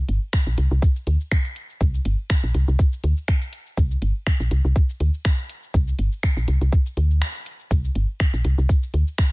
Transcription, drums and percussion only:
0.09 closed hi-hat medium
0.33 finger snap medium
0.33 kick loud
0.33 cabasa medium
0.47 cabasa soft
0.58 closed hi-hat medium
0.71 cabasa soft
0.82 kick loud
0.82 cabasa medium
0.96 cabasa soft
1.07 closed hi-hat medium
1.20 cabasa soft
1.32 finger snap medium
1.32 kick loud
1.32 cabasa medium
1.45 closed hi-hat soft
1.45 cabasa soft
1.56 closed hi-hat loud
1.70 cabasa soft
1.81 kick loud
1.81 cabasa medium
1.94 cabasa soft
2.05 closed hi-hat medium
2.30 finger snap medium
2.30 kick loud
2.30 cabasa medium
2.43 cabasa soft
2.54 closed hi-hat medium
2.68 cabasa soft
2.79 kick loud
2.79 cabasa medium
2.93 cabasa soft
3.04 closed hi-hat medium
3.17 cabasa soft
3.28 finger snap medium
3.28 kick loud
3.28 cabasa medium
3.42 closed hi-hat soft
3.42 cabasa soft
3.53 closed hi-hat medium
3.66 cabasa soft
3.77 kick loud
3.77 cabasa medium
3.91 cabasa soft
4.02 closed hi-hat medium
4.27 finger snap medium
4.27 kick loud
4.27 cabasa medium
4.40 cabasa soft
4.51 closed hi-hat medium
4.65 cabasa soft
4.76 kick loud
4.76 cabasa medium
4.89 cabasa soft
5.00 closed hi-hat medium
5.14 cabasa soft
5.25 finger snap medium
5.25 kick loud
5.25 cabasa medium
5.38 closed hi-hat soft
5.38 cabasa soft
5.50 closed hi-hat medium
5.63 cabasa soft
5.74 kick loud
5.74 cabasa medium
5.88 cabasa soft
5.99 closed hi-hat medium
6.12 cabasa soft
6.23 finger snap loud
6.23 kick loud
6.23 cabasa medium
6.37 cabasa soft
6.48 closed hi-hat medium
6.61 closed hi-hat soft
6.61 cabasa soft
6.72 kick loud
6.72 cabasa medium
6.86 cabasa soft
6.97 closed hi-hat medium
7.11 cabasa soft
7.22 finger snap medium
7.22 cabasa medium
7.35 closed hi-hat soft
7.35 cabasa soft
7.46 closed hi-hat medium
7.60 cabasa soft
7.71 kick loud
7.71 cabasa medium
7.84 cabasa soft
7.95 closed hi-hat medium
8.20 finger snap loud
8.20 kick loud
8.20 cabasa medium
8.34 cabasa soft
8.45 closed hi-hat medium
8.58 cabasa soft
8.69 kick loud
8.69 cabasa medium
8.83 cabasa soft
8.94 closed hi-hat medium
9.07 cabasa soft
9.18 finger snap loud
9.18 kick loud
9.18 cabasa medium

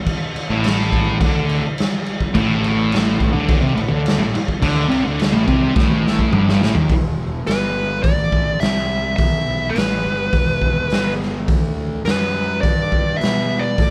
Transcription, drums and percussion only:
0.06 kick medium
0.06 crash medium
0.36 crash medium
0.64 snare loud
0.64 crash medium
0.81 snare soft
0.93 kick medium
0.93 crash medium
1.21 kick loud
1.21 crash medium
1.49 crash medium
1.78 snare loud
1.78 crash medium
2.06 crash medium
2.21 kick medium
2.35 kick loud
2.35 crash medium
2.64 crash medium
2.92 snare loud
2.92 crash medium
3.20 kick medium
3.20 crash medium
3.48 kick loud
3.48 crash medium
3.77 crash medium
4.06 snare loud
4.06 crash medium
4.35 crash medium
4.48 kick medium
4.62 kick loud
4.62 crash medium
4.91 crash medium
5.19 snare loud
5.19 crash medium
5.48 kick medium
5.48 crash medium
5.76 kick loud
5.76 snare medium
5.90 high tom medium
6.07 snare medium
6.19 kick medium
6.33 mid tom medium
6.49 snare medium
6.63 snare loud
6.75 floor tom medium
6.89 kick loud
6.89 open hi-hat medium
7.47 snare loud
7.47 open hi-hat medium
8.04 kick loud
8.04 open hi-hat medium
8.32 kick medium
8.60 snare loud
8.60 open hi-hat medium
9.18 kick loud
9.18 open hi-hat medium
9.76 snare loud
9.76 open hi-hat medium
10.32 kick loud
10.32 open hi-hat medium
10.62 kick medium
10.90 snare loud
10.90 open hi-hat medium
11.23 snare soft
11.48 kick loud
11.48 open hi-hat medium
12.05 snare loud
12.05 open hi-hat medium
12.63 kick loud
12.63 open hi-hat soft
12.92 kick medium
13.21 snare loud
13.21 open hi-hat medium
13.78 kick loud
13.78 open hi-hat medium

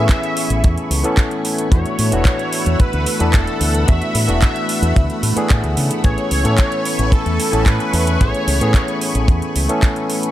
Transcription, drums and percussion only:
0.09 kick loud
0.09 clap loud
0.09 closed hi-hat medium
0.23 closed hi-hat soft
0.37 open hi-hat loud
0.50 closed hi-hat medium
0.64 kick loud
0.64 closed hi-hat medium
0.78 closed hi-hat soft
0.91 open hi-hat loud
1.04 closed hi-hat medium
1.17 kick loud
1.17 clap loud
1.17 closed hi-hat medium
1.31 closed hi-hat soft
1.45 open hi-hat loud
1.58 closed hi-hat medium
1.72 kick loud
1.72 closed hi-hat medium
1.86 closed hi-hat soft
1.99 open hi-hat loud
2.12 closed hi-hat medium
2.25 kick loud
2.25 clap loud
2.25 closed hi-hat medium
2.39 closed hi-hat soft
2.53 open hi-hat loud
2.66 closed hi-hat soft
2.80 kick loud
2.80 closed hi-hat soft
2.93 closed hi-hat soft
3.06 open hi-hat loud
3.20 closed hi-hat medium
3.33 kick loud
3.33 clap loud
3.33 closed hi-hat medium
3.47 closed hi-hat soft
3.61 open hi-hat loud
3.74 closed hi-hat medium
3.88 kick loud
3.88 closed hi-hat medium
4.02 closed hi-hat soft
4.15 open hi-hat loud
4.29 closed hi-hat medium
4.42 kick loud
4.42 clap loud
4.42 closed hi-hat medium
4.56 closed hi-hat soft
4.69 open hi-hat loud
4.83 closed hi-hat soft
4.96 kick loud
4.96 closed hi-hat soft
5.10 closed hi-hat soft
5.23 open hi-hat loud
5.37 closed hi-hat medium
5.50 kick loud
5.50 clap loud
5.50 closed hi-hat soft
5.64 closed hi-hat soft
5.77 open hi-hat loud
5.91 closed hi-hat medium
6.04 kick loud
6.04 closed hi-hat medium
6.18 closed hi-hat soft
6.31 open hi-hat loud
6.45 closed hi-hat medium
6.58 kick loud
6.58 clap loud
6.58 closed hi-hat medium
6.72 closed hi-hat soft
6.85 open hi-hat loud
6.99 closed hi-hat soft
7.12 kick loud
7.12 closed hi-hat medium
7.26 closed hi-hat soft
7.40 open hi-hat loud
7.53 closed hi-hat medium
7.66 kick loud
7.66 clap loud
7.66 closed hi-hat medium
7.80 closed hi-hat soft
7.93 open hi-hat loud
8.07 closed hi-hat medium
8.21 kick loud
8.21 closed hi-hat medium
8.35 closed hi-hat soft
8.48 open hi-hat loud
8.61 closed hi-hat medium
8.74 kick loud
8.74 clap loud
8.74 closed hi-hat medium
8.88 closed hi-hat soft
9.01 open hi-hat medium
9.15 closed hi-hat medium
9.28 kick loud
9.28 closed hi-hat medium
9.42 closed hi-hat soft
9.56 open hi-hat loud
9.69 closed hi-hat medium
9.83 kick loud
9.83 clap loud
9.83 closed hi-hat medium
9.96 closed hi-hat soft
10.10 open hi-hat medium
10.23 closed hi-hat medium

